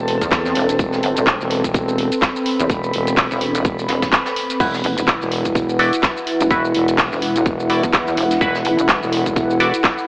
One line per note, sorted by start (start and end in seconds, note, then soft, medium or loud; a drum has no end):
0.00 0.19 E1 loud
0.00 4.56 C4 medium
0.00 4.60 C4 medium
0.00 4.56 A4 medium
0.00 4.56 B4 medium
0.00 2.09 A5 medium
0.08 closed hi-hat medium
0.08 open hi-hat loud
0.21 0.54 E2 loud
0.21 kick medium
0.21 closed hi-hat medium
0.21 shaker medium
0.32 kick loud
0.32 snare loud
0.32 clap loud
0.32 closed hi-hat loud
0.32 closed hi-hat soft
0.32 shaker medium
0.45 snare soft
0.45 shaker soft
0.55 0.78 E1 loud
0.55 closed hi-hat medium
0.55 open hi-hat loud
0.69 snare soft
0.69 closed hi-hat medium
0.69 shaker medium
0.79 1.01 E1 loud
0.79 kick loud
0.79 closed hi-hat medium
0.79 shaker medium
0.92 snare medium
0.92 shaker soft
1.03 1.15 G1 loud
1.03 closed hi-hat medium
1.03 open hi-hat loud
1.16 1.38 E1 loud
1.16 closed hi-hat soft
1.16 closed hi-hat medium
1.16 shaker medium
1.26 kick loud
1.26 snare loud
1.26 clap loud
1.26 closed hi-hat medium
1.26 shaker medium
1.40 1.62 E1 loud
1.40 closed hi-hat soft
1.40 shaker soft
1.50 closed hi-hat medium
1.50 open hi-hat medium
1.64 2.10 E1 medium
1.64 kick medium
1.64 closed hi-hat medium
1.64 shaker medium
1.74 kick loud
1.74 closed hi-hat medium
1.74 shaker medium
1.89 shaker soft
1.94 6.02 B5 medium
1.94 closed hi-hat medium
1.94 open hi-hat loud
2.12 closed hi-hat soft
2.12 closed hi-hat medium
2.12 shaker medium
2.22 kick loud
2.22 snare loud
2.22 clap loud
2.22 closed hi-hat medium
2.22 shaker medium
2.36 shaker soft
2.46 closed hi-hat medium
2.46 open hi-hat loud
2.60 2.68 E1 loud
2.60 closed hi-hat medium
2.60 shaker medium
2.70 2.92 E1 loud
2.70 kick loud
2.70 closed hi-hat medium
2.70 shaker medium
2.84 shaker soft
2.93 3.29 E1 loud
2.93 closed hi-hat medium
2.93 open hi-hat loud
3.07 closed hi-hat medium
3.07 closed hi-hat soft
3.07 shaker medium
3.17 kick loud
3.17 snare loud
3.17 clap loud
3.17 closed hi-hat medium
3.17 open hi-hat medium
3.17 shaker medium
3.31 3.63 E1 loud
3.31 shaker soft
3.41 closed hi-hat medium
3.41 open hi-hat loud
3.55 closed hi-hat medium
3.55 shaker medium
3.65 3.87 E1 loud
3.65 kick loud
3.65 closed hi-hat medium
3.65 shaker medium
3.79 closed hi-hat soft
3.79 shaker soft
3.88 4.11 E1 loud
3.88 snare loud
3.88 closed hi-hat medium
3.88 open hi-hat loud
4.02 kick medium
4.02 snare loud
4.02 closed hi-hat medium
4.02 shaker medium
4.12 kick loud
4.12 snare loud
4.12 clap loud
4.12 closed hi-hat medium
4.12 shaker medium
4.26 snare medium
4.26 closed hi-hat medium
4.26 shaker soft
4.36 closed hi-hat medium
4.36 open hi-hat medium
4.50 snare soft
4.50 closed hi-hat medium
4.50 shaker medium
4.60 4.82 E1 medium
4.60 4.73 E4 loud
4.60 10.07 E4 medium
4.60 4.73 F#4 medium
4.60 4.73 B4 loud
4.60 8.37 B4 medium
4.60 10.07 F#5 medium
4.60 kick loud
4.60 closed hi-hat medium
4.60 crash medium
4.60 shaker medium
4.74 snare medium
4.74 shaker soft
4.83 4.95 F#1 medium
4.83 10.07 B4 medium
4.83 closed hi-hat medium
4.83 open hi-hat loud
4.97 5.19 E1 loud
4.97 closed hi-hat soft
4.97 closed hi-hat medium
4.97 shaker medium
5.08 kick loud
5.08 snare loud
5.08 clap loud
5.08 closed hi-hat medium
5.08 shaker medium
5.21 5.43 E1 loud
5.21 10.07 F#5 medium
5.21 closed hi-hat soft
5.21 shaker soft
5.32 closed hi-hat medium
5.32 open hi-hat loud
5.45 kick medium
5.45 closed hi-hat medium
5.45 shaker medium
5.55 kick loud
5.55 closed hi-hat medium
5.55 shaker medium
5.69 shaker soft
5.79 5.92 E4 medium
5.79 5.92 F#4 medium
5.79 5.92 D5 medium
5.79 closed hi-hat medium
5.79 open hi-hat loud
5.93 closed hi-hat soft
5.93 closed hi-hat medium
5.93 shaker medium
6.03 kick loud
6.03 snare loud
6.03 clap loud
6.03 closed hi-hat medium
6.03 shaker medium
6.17 shaker soft
6.27 closed hi-hat medium
6.27 open hi-hat medium
6.41 6.49 E1 loud
6.41 closed hi-hat medium
6.41 shaker medium
6.51 6.73 E1 loud
6.51 6.64 E4 loud
6.51 6.64 F#4 medium
6.51 6.64 B4 loud
6.51 kick loud
6.51 closed hi-hat medium
6.51 shaker medium
6.65 shaker soft
6.74 7.10 E1 loud
6.74 closed hi-hat medium
6.74 open hi-hat loud
6.88 closed hi-hat soft
6.88 closed hi-hat medium
6.88 shaker medium
6.98 kick loud
6.98 snare loud
6.98 clap loud
6.98 closed hi-hat medium
6.98 open hi-hat medium
6.98 shaker medium
7.12 7.44 E1 loud
7.12 shaker soft
7.21 closed hi-hat medium
7.21 open hi-hat loud
7.36 closed hi-hat medium
7.36 shaker medium
7.46 7.81 E1 loud
7.46 kick loud
7.46 closed hi-hat medium
7.46 shaker medium
7.60 shaker soft
7.70 7.83 E4 medium
7.70 7.83 F#4 medium
7.70 7.83 D5 medium
7.70 closed hi-hat medium
7.70 open hi-hat loud
7.83 8.16 E2 loud
7.83 kick medium
7.83 closed hi-hat medium
7.83 shaker medium
7.93 kick loud
7.93 snare loud
7.93 clap loud
7.93 closed hi-hat medium
7.93 shaker medium
8.06 snare soft
8.06 shaker soft
8.17 8.39 E1 loud
8.17 closed hi-hat medium
8.17 open hi-hat loud
8.31 snare medium
8.31 closed hi-hat medium
8.31 shaker medium
8.41 8.63 E1 loud
8.41 8.54 E4 medium
8.41 8.54 F#4 medium
8.41 10.07 A4 medium
8.41 8.54 B4 loud
8.41 kick loud
8.41 closed hi-hat medium
8.41 shaker medium
8.55 snare medium
8.55 shaker soft
8.65 8.76 F#1 loud
8.65 closed hi-hat medium
8.65 open hi-hat loud
8.79 9.00 E1 loud
8.79 closed hi-hat medium
8.79 closed hi-hat soft
8.79 shaker medium
8.88 kick loud
8.88 snare loud
8.88 clap loud
8.88 closed hi-hat medium
8.88 shaker medium
9.02 9.24 E1 loud
9.02 closed hi-hat soft
9.02 shaker soft
9.12 closed hi-hat medium
9.12 open hi-hat loud
9.26 kick medium
9.26 closed hi-hat medium
9.26 shaker medium
9.36 kick loud
9.36 closed hi-hat medium
9.36 shaker medium
9.50 shaker soft
9.60 9.73 E4 medium
9.60 9.73 F#4 medium
9.60 9.73 D5 medium
9.60 closed hi-hat medium
9.60 open hi-hat loud
9.73 closed hi-hat soft
9.73 closed hi-hat medium
9.73 shaker medium
9.84 kick loud
9.84 snare loud
9.84 clap loud
9.84 closed hi-hat medium
9.84 closed hi-hat soft
9.84 shaker medium
9.98 shaker soft